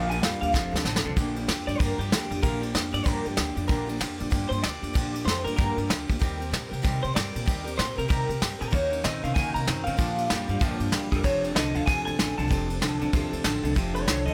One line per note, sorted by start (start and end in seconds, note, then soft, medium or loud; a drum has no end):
0.00 0.21 A#1 loud
0.00 0.10 A#2 medium
0.00 0.20 A#2 medium
0.00 0.10 D3 medium
0.00 0.11 F3 medium
0.00 0.20 F3 loud
0.09 0.19 F3 soft
0.09 0.20 A#3 medium
0.09 0.21 D4 medium
0.09 0.22 G4 medium
0.09 0.22 G#5 medium
0.09 ride medium
0.20 0.40 F2 medium
0.20 0.40 A#2 medium
0.20 0.41 F3 medium
0.20 0.41 G3 medium
0.20 0.41 A#3 medium
0.20 0.40 D4 medium
0.20 0.39 G4 medium
0.20 0.40 F5 loud
0.20 snare loud
0.20 ride medium
0.40 0.53 D#2 medium
0.40 0.53 A#2 medium
0.40 0.51 F3 soft
0.40 0.53 G3 medium
0.40 0.53 A#3 medium
0.40 0.53 D4 medium
0.40 0.53 G4 medium
0.40 0.72 F5 medium
0.40 ride medium
0.53 0.72 F1 medium
0.53 0.83 F2 medium
0.53 0.84 C3 medium
0.53 0.73 F3 medium
0.53 0.73 C4 medium
0.53 0.72 D4 medium
0.53 0.70 A4 medium
0.53 kick loud
0.53 snare medium
0.71 0.84 D2 medium
0.71 0.84 C4 soft
0.71 0.86 D4 medium
0.71 0.85 A4 medium
0.76 snare medium
0.84 1.03 A1 medium
0.84 1.03 F2 medium
0.84 1.04 D3 medium
0.84 1.04 F3 medium
0.84 1.05 C4 medium
0.84 1.05 D4 medium
0.84 1.02 A4 medium
0.84 snare medium
0.96 snare loud
1.04 1.16 C2 medium
1.04 1.16 F2 medium
1.04 1.16 D3 loud
1.04 1.17 C4 medium
1.04 1.17 D4 medium
1.04 1.17 A4 medium
1.16 1.46 A#1 loud
1.16 1.36 A#2 medium
1.16 1.36 D3 medium
1.16 1.37 F3 medium
1.16 1.37 A#3 medium
1.16 1.36 D4 loud
1.16 1.34 G4 medium
1.16 kick loud
1.16 ride medium
1.36 1.46 F3 medium
1.36 1.48 A#3 medium
1.36 1.49 D4 medium
1.36 1.48 G4 medium
1.36 ride medium
1.47 1.66 F2 medium
1.47 1.67 F3 medium
1.47 1.68 A#3 medium
1.47 1.67 D4 medium
1.47 1.66 G4 medium
1.47 snare loud
1.47 ride medium
1.67 1.79 G2 medium
1.67 1.79 F3 medium
1.67 1.79 A#3 soft
1.67 1.80 D4 medium
1.67 1.80 G4 medium
1.67 1.80 D5 loud
1.67 ride medium
1.79 1.98 G2 medium
1.79 1.99 A#2 medium
1.79 1.99 D3 medium
1.79 1.99 F3 medium
1.79 2.00 A#3 medium
1.79 1.98 D4 medium
1.79 1.97 G4 medium
1.79 1.99 A#4 medium
1.79 kick loud
1.79 ride medium
1.98 2.10 G2 medium
1.98 2.09 F3 soft
1.98 2.11 A#3 medium
1.98 2.11 D4 medium
1.98 2.11 G4 medium
1.98 2.42 G4 medium
1.98 ride medium
2.10 2.29 D2 medium
2.10 2.30 F3 medium
2.10 2.30 A#3 medium
2.10 2.29 D4 medium
2.10 2.28 G4 medium
2.10 snare loud
2.10 ride medium
2.29 2.42 F2 medium
2.29 2.41 F3 soft
2.29 2.42 A#3 soft
2.29 2.42 D4 medium
2.29 2.42 G4 medium
2.29 ride medium
2.42 2.72 A#1 loud
2.42 2.62 A#2 medium
2.42 2.62 D3 medium
2.42 2.62 F3 medium
2.42 2.62 A#3 medium
2.42 2.60 D4 medium
2.42 2.59 G4 medium
2.42 2.62 A#4 medium
2.42 kick loud
2.42 ride medium
2.60 2.72 F3 soft
2.60 2.73 A#3 soft
2.60 2.74 D4 medium
2.60 2.73 G4 medium
2.60 ride medium
2.73 2.92 F2 medium
2.73 2.93 F3 medium
2.73 2.92 A#3 medium
2.73 2.91 D4 medium
2.73 2.90 G4 medium
2.73 snare loud
2.73 ride medium
2.91 3.05 G2 medium
2.91 3.04 F3 soft
2.91 3.04 A#3 medium
2.91 3.05 D4 medium
2.91 3.05 G4 medium
2.91 3.08 D5 medium
2.91 ride medium
3.04 3.24 G2 medium
3.04 3.24 A#2 medium
3.04 3.25 D3 medium
3.04 3.25 F3 medium
3.04 3.24 A#3 medium
3.04 3.23 D4 medium
3.04 3.22 G4 medium
3.04 3.27 A#4 medium
3.04 kick loud
3.04 snare soft
3.04 ride medium
3.23 3.37 G2 medium
3.23 3.35 F3 soft
3.23 3.36 A#3 medium
3.23 3.37 D4 soft
3.23 3.37 G4 medium
3.23 3.67 G4 medium
3.23 ride medium
3.36 3.55 D2 medium
3.36 3.56 F3 medium
3.36 3.56 A#3 medium
3.36 3.55 D4 medium
3.36 3.54 G4 medium
3.36 snare loud
3.36 ride medium
3.55 3.68 F2 medium
3.55 3.67 F3 soft
3.55 3.68 A#3 soft
3.55 3.68 D4 medium
3.55 3.68 G4 soft
3.55 ride medium
3.67 3.98 A#1 loud
3.67 3.87 A#2 medium
3.67 3.88 D3 medium
3.67 3.88 F3 medium
3.67 3.88 A#3 medium
3.67 3.86 D4 medium
3.67 3.85 G4 medium
3.67 3.87 A#4 loud
3.67 kick loud
3.67 ride medium
3.87 3.97 F3 medium
3.87 3.98 A#3 medium
3.87 3.99 D4 medium
3.87 4.00 G4 medium
3.87 ride medium
3.98 4.19 F2 medium
3.98 4.19 F3 medium
3.98 4.19 A#3 medium
3.98 4.18 D4 medium
3.98 4.16 G4 medium
3.98 snare loud
3.98 ride medium
4.18 4.31 G2 medium
4.18 4.30 F3 medium
4.18 4.30 A#3 medium
4.18 4.31 D4 medium
4.18 4.31 G4 medium
4.18 ride medium
4.30 4.50 G2 medium
4.30 4.50 A#2 medium
4.30 4.51 D3 medium
4.30 4.51 F3 medium
4.30 4.51 A#3 loud
4.30 4.50 D4 loud
4.30 4.49 G4 loud
4.30 kick loud
4.30 ride medium
4.49 4.62 G2 medium
4.49 4.62 A#3 soft
4.49 4.63 D4 medium
4.49 4.63 G4 soft
4.49 4.62 C5 loud
4.49 ride medium
4.53 4.61 F3 soft
4.62 4.82 D2 medium
4.62 4.82 F3 medium
4.62 4.82 A#3 medium
4.62 4.81 D4 medium
4.62 4.80 G4 medium
4.62 5.24 D5 loud
4.62 snare loud
4.62 ride medium
4.81 4.94 F2 medium
4.81 4.93 F3 soft
4.81 4.94 A#3 soft
4.81 4.94 D4 medium
4.81 4.94 G4 medium
4.81 ride medium
4.93 5.24 A#1 loud
4.93 5.14 A#2 medium
4.93 5.14 D3 medium
4.93 5.14 F3 medium
4.93 5.14 A#3 medium
4.93 5.13 D4 medium
4.93 5.11 G4 medium
4.93 kick loud
4.93 ride medium
5.13 5.23 F3 medium
5.13 5.24 A#3 medium
5.13 5.26 D4 medium
5.13 5.26 G4 medium
5.13 ride medium
5.24 5.44 F2 medium
5.24 5.45 F3 medium
5.24 5.45 A#3 medium
5.24 5.44 D4 medium
5.24 5.43 G4 medium
5.24 5.44 C5 medium
5.24 snare loud
5.24 ride medium
5.44 5.57 G2 medium
5.44 5.56 F3 soft
5.44 5.57 A#3 medium
5.44 5.57 D4 medium
5.44 5.57 G4 medium
5.44 5.55 A#4 loud
5.44 ride medium
5.56 5.76 G2 medium
5.56 5.76 A#2 medium
5.56 5.77 D3 medium
5.56 5.77 F3 medium
5.56 5.77 A#3 medium
5.56 5.76 D4 medium
5.56 5.75 G4 medium
5.56 5.88 A#4 medium
5.56 kick loud
5.56 ride medium
5.76 5.88 G2 medium
5.76 5.86 F3 soft
5.76 5.88 A#3 soft
5.76 5.88 D4 soft
5.76 5.89 G4 medium
5.76 ride medium
5.87 6.07 D2 medium
5.87 6.08 F3 medium
5.87 6.08 A#3 medium
5.87 6.07 D4 medium
5.87 6.06 G4 medium
5.87 snare loud
5.87 ride medium
6.07 6.22 D2 medium
6.07 6.19 F3 soft
6.07 6.20 A#3 soft
6.07 6.21 D4 medium
6.07 6.20 G4 medium
6.07 kick medium
6.07 ride medium
6.19 6.51 D#2 loud
6.19 6.40 D#3 medium
6.19 6.40 G3 medium
6.19 6.40 C4 medium
6.19 6.39 G4 medium
6.19 6.37 A#4 medium
6.19 kick loud
6.19 ride medium
6.38 6.50 C4 medium
6.38 6.51 G4 medium
6.38 6.51 A#4 medium
6.38 ride medium
6.50 6.70 A#2 medium
6.50 6.71 G3 medium
6.50 6.71 C4 medium
6.50 6.70 G4 medium
6.50 snare loud
6.50 ride medium
6.54 6.68 A#4 medium
6.69 6.83 C3 medium
6.69 6.82 C4 medium
6.69 6.82 G4 medium
6.69 6.83 A#4 medium
6.73 ride medium
6.82 7.02 C3 medium
6.82 7.02 D#3 medium
6.82 7.03 G3 medium
6.82 7.03 C4 medium
6.82 7.02 G4 medium
6.82 7.00 A#4 loud
6.82 kick loud
6.82 snare soft
6.82 ride medium
7.01 7.15 C3 medium
7.01 7.14 C4 soft
7.01 7.15 G4 soft
7.01 7.15 A#4 medium
7.01 7.15 C5 loud
7.01 ride medium
7.14 7.34 G2 medium
7.14 7.34 G3 medium
7.14 7.35 C4 medium
7.14 7.33 G4 medium
7.14 7.76 D5 medium
7.14 snare loud
7.14 ride medium
7.18 7.32 A#4 medium
7.33 7.47 A#2 loud
7.33 7.46 C4 soft
7.33 7.47 G4 soft
7.33 7.46 A#4 medium
7.33 ride medium
7.46 7.76 D#2 medium
7.46 7.66 D#3 medium
7.46 7.66 G3 medium
7.46 7.66 C4 medium
7.46 7.64 G4 medium
7.46 7.63 A#4 medium
7.46 kick loud
7.46 ride medium
7.64 7.77 C4 medium
7.64 7.78 G4 medium
7.64 7.77 A#4 medium
7.64 ride medium
7.76 7.97 A#2 medium
7.76 7.97 G3 medium
7.76 7.98 C4 medium
7.76 7.97 G4 medium
7.76 7.94 A#4 medium
7.76 7.97 C5 loud
7.76 snare loud
7.76 ride medium
7.96 8.09 C3 medium
7.96 8.08 C4 soft
7.96 8.09 G4 medium
7.96 8.09 A#4 medium
7.96 8.08 A#4 medium
7.96 ride medium
8.08 8.28 C3 medium
8.08 8.28 D#3 medium
8.08 8.29 G3 medium
8.08 8.29 C4 medium
8.08 8.28 G4 medium
8.08 8.40 A#4 medium
8.08 8.26 A#4 medium
8.08 kick loud
8.08 ride medium
8.28 8.40 C3 medium
8.28 8.40 C4 soft
8.28 8.41 G4 medium
8.28 8.41 A#4 medium
8.28 ride medium
8.40 8.59 G2 medium
8.40 8.60 G3 medium
8.40 8.61 C4 medium
8.40 8.59 G4 medium
8.40 8.57 A#4 medium
8.40 snare loud
8.40 ride medium
8.59 8.72 A#2 loud
8.59 8.72 C4 soft
8.59 8.72 G4 soft
8.59 8.72 A#4 medium
8.59 8.73 A#4 loud
8.59 ride medium
8.71 9.02 D#2 loud
8.71 8.91 D#3 medium
8.71 9.02 D#3 medium
8.71 8.91 F#3 medium
8.71 9.02 A#3 loud
8.71 8.92 C#4 medium
8.71 8.91 D#4 medium
8.71 8.89 A#4 medium
8.71 9.03 C#5 medium
8.71 kick loud
8.71 ride medium
8.90 9.02 C#4 medium
8.90 9.03 D#4 medium
8.90 9.03 A#4 medium
8.90 ride medium
9.02 9.22 A#2 medium
9.02 9.22 D#3 medium
9.02 9.22 F#3 medium
9.02 9.22 C4 loud
9.02 9.23 C#4 medium
9.02 9.23 D#4 medium
9.02 9.20 A#4 medium
9.02 9.23 D#5 loud
9.02 snare loud
9.02 ride medium
9.22 9.35 C3 medium
9.22 9.35 D#3 medium
9.22 9.35 C4 medium
9.22 9.34 C#4 medium
9.22 9.35 D#4 medium
9.22 9.35 A#4 medium
9.22 9.34 F5 medium
9.22 ride medium
9.34 9.54 C#3 loud
9.34 9.54 D#3 medium
9.34 9.65 D#3 medium
9.34 9.55 F#3 medium
9.34 9.65 A#3 loud
9.34 9.55 C#4 medium
9.34 9.54 D#4 medium
9.34 9.52 A#4 medium
9.34 9.54 G#5 medium
9.34 kick loud
9.34 snare soft
9.34 ride medium
9.53 9.66 C3 medium
9.53 9.65 C#4 soft
9.53 9.66 D#4 medium
9.53 9.66 A#4 medium
9.53 9.85 A#5 medium
9.53 ride medium
9.65 9.85 F#2 medium
9.65 9.85 D#3 medium
9.65 9.85 F#3 medium
9.65 9.85 C4 loud
9.65 9.86 C#4 medium
9.65 9.85 D#4 medium
9.65 9.83 A#4 medium
9.65 snare loud
9.65 ride medium
9.84 9.98 A#2 medium
9.84 9.98 D#3 medium
9.84 9.98 C4 medium
9.84 9.98 D#4 soft
9.84 9.98 A#4 medium
9.84 10.77 F5 medium
9.84 ride medium
9.88 9.98 C#4 soft
9.97 10.28 A#1 medium
9.97 10.17 A#2 medium
9.97 10.28 A#2 medium
9.97 10.17 D3 medium
9.97 10.17 F3 medium
9.97 10.28 F3 loud
9.97 10.17 A#3 medium
9.97 10.16 D4 medium
9.97 10.15 G4 medium
9.97 kick loud
9.97 ride medium
10.16 10.27 F3 soft
10.16 10.29 A#3 medium
10.16 10.30 D4 medium
10.16 10.29 G4 medium
10.16 ride medium
10.28 10.48 F2 medium
10.28 10.48 A#2 medium
10.28 10.48 F3 medium
10.28 10.48 G3 medium
10.28 10.49 A#3 medium
10.28 10.48 D4 medium
10.28 10.46 G4 medium
10.28 snare loud
10.28 ride medium
10.48 10.60 G2 medium
10.48 10.60 A#2 medium
10.48 10.60 F3 medium
10.48 10.61 G3 medium
10.48 10.60 A#3 medium
10.48 10.60 D4 medium
10.48 10.61 G4 medium
10.48 ride medium
10.59 10.79 G2 medium
10.59 10.80 A#2 medium
10.59 10.90 A#2 medium
10.59 10.80 D3 medium
10.59 10.80 F3 medium
10.59 10.90 F3 medium
10.59 10.79 A#3 medium
10.59 10.78 D4 medium
10.59 10.77 G4 loud
10.59 kick loud
10.59 ride medium
10.78 10.92 G2 medium
10.78 10.88 F3 medium
10.78 10.90 A#3 medium
10.78 10.91 D4 medium
10.78 10.92 G4 medium
10.78 ride medium
10.89 11.10 D2 medium
10.89 11.10 A#2 medium
10.89 11.11 F3 medium
10.89 11.10 G3 loud
10.89 11.11 A#3 medium
10.89 11.10 D4 medium
10.89 11.09 G4 medium
10.89 snare loud
10.89 ride medium
11.10 11.26 F2 medium
11.10 11.23 A#2 medium
11.10 11.21 F3 soft
11.10 11.23 G3 medium
11.10 11.23 A#3 soft
11.10 11.22 D4 medium
11.10 11.23 G4 medium
11.10 11.24 A#4 medium
11.10 kick medium
11.10 ride medium
11.23 11.53 F1 loud
11.23 11.53 F2 medium
11.23 11.54 C3 loud
11.23 11.43 F3 medium
11.23 11.43 C4 medium
11.23 11.43 D4 medium
11.23 11.41 A4 medium
11.23 11.55 C#5 medium
11.23 kick loud
11.23 ride medium
11.42 11.54 C4 soft
11.42 11.55 D4 medium
11.42 11.55 A4 medium
11.42 ride medium
11.54 11.73 C2 medium
11.54 11.73 F2 medium
11.54 11.73 D3 medium
11.54 11.74 F3 medium
11.54 11.75 C4 medium
11.54 11.74 D4 medium
11.54 11.72 A4 medium
11.54 11.75 D#5 loud
11.54 snare loud
11.54 ride medium
11.73 11.86 D2 medium
11.73 11.85 F2 medium
11.73 11.86 D3 medium
11.73 11.85 C4 soft
11.73 11.86 D4 medium
11.73 11.86 A4 medium
11.73 11.86 F5 medium
11.73 ride medium
11.85 12.05 D#2 medium
11.85 12.16 F2 medium
11.85 12.16 C3 medium
11.85 12.06 F3 medium
11.85 12.06 C4 medium
11.85 12.05 D4 medium
11.85 12.03 A4 medium
11.85 12.04 G#5 medium
11.85 kick loud
11.85 snare soft
11.85 ride medium
12.04 12.18 D2 medium
12.04 12.16 C4 soft
12.04 12.17 D4 medium
12.04 12.17 A4 medium
12.04 12.36 G#5 loud
12.04 ride medium
12.16 12.36 A1 medium
12.16 12.36 F2 medium
12.16 12.36 D3 loud
12.16 12.37 F3 medium
12.16 12.37 C4 medium
12.16 12.36 D4 medium
12.16 12.35 A4 medium
12.16 snare loud
12.16 ride medium
12.36 12.49 C2 medium
12.36 12.49 F2 medium
12.36 12.49 D3 loud
12.36 12.48 C4 soft
12.36 12.48 D4 soft
12.36 12.49 A4 soft
12.36 13.29 A5 loud
12.36 ride medium
12.48 12.79 F1 medium
12.48 12.79 F2 medium
12.48 12.79 C3 medium
12.48 12.68 F3 medium
12.48 12.69 C4 medium
12.48 12.68 D4 medium
12.48 12.67 A4 medium
12.48 kick loud
12.48 ride medium
12.68 12.80 C4 soft
12.68 12.81 D4 medium
12.68 12.81 A4 medium
12.68 ride medium
12.80 12.99 C2 medium
12.80 12.99 F2 medium
12.80 12.99 D3 loud
12.80 13.00 F3 medium
12.80 13.00 C4 medium
12.80 13.00 D4 medium
12.80 12.98 A4 medium
12.80 snare loud
12.80 ride medium
12.99 13.12 D2 medium
12.99 13.12 F2 medium
12.99 13.12 D3 medium
12.99 13.13 C4 medium
12.99 13.13 D4 medium
12.99 13.12 A4 medium
12.99 ride medium
13.13 13.31 D#2 medium
13.13 13.42 F2 medium
13.13 13.42 C3 loud
13.13 13.32 F3 medium
13.13 13.33 C4 medium
13.13 13.32 D4 medium
13.13 13.29 A4 medium
13.13 kick loud
13.13 ride medium
13.31 13.43 D2 medium
13.31 13.43 C4 soft
13.31 13.45 D4 medium
13.31 13.43 A4 medium
13.31 ride medium
13.43 13.62 A1 medium
13.43 13.62 F2 medium
13.43 13.62 D3 loud
13.43 13.63 F3 medium
13.43 13.63 C4 medium
13.43 13.63 D4 medium
13.43 13.61 A4 medium
13.43 snare loud
13.43 ride medium
13.63 13.74 C2 medium
13.63 13.75 F2 medium
13.63 13.75 D3 loud
13.63 13.74 C4 soft
13.63 13.75 D4 medium
13.63 13.75 A4 medium
13.63 ride medium
13.74 14.05 F1 medium
13.74 14.05 F2 loud
13.74 14.05 C3 loud
13.74 13.94 F3 medium
13.74 13.95 C4 medium
13.74 13.94 D4 medium
13.74 13.93 A4 loud
13.74 kick loud
13.74 ride medium
13.94 14.06 C4 soft
13.94 14.07 D4 medium
13.94 14.06 A4 medium
13.94 14.25 C#5 loud
13.94 ride medium
14.05 14.25 C2 medium
14.05 14.24 F2 medium
14.05 14.25 D3 medium
14.05 14.25 F3 medium
14.05 14.26 C4 medium
14.05 14.26 D4 medium
14.05 14.24 A4 medium
14.05 snare loud
14.05 ride medium
14.26 14.34 D2 medium
14.26 14.34 F2 medium
14.26 14.34 D3 medium
14.26 14.34 C4 medium
14.26 14.34 D4 medium
14.26 14.34 A4 medium
14.26 14.34 D#5 medium
14.26 ride medium